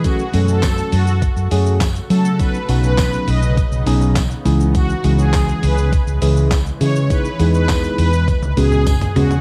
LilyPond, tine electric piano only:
\new Staff \with { instrumentName = "Tine electric piano" } { \time 4/4 \key fis \dorian \tempo 4 = 102 <fis a cis' fis' a'>8 <fis a cis' fis' a'>4 r4 <fis a cis' fis' gis'>8 r8 <fis a cis' fis' a'>8 | <fis b cis' dis' fis'>8 <fis b cis' dis' fis'>4 r4 <fis b cis' dis' gis'>8 r8 <e gis cis' e' gis'>8~ | <e gis cis' e' gis'>8 <e gis cis' e' gis'>4 r4 <e gis cis' e' gis'>8 r8 <e gis cis' e' gis'>8 | <gis b dis' e' gis'>8 <gis b dis' e' gis'>4 r4 <gis b cis' fis' gis'>8 r8 <gis b cis' fis' gis'>8 | }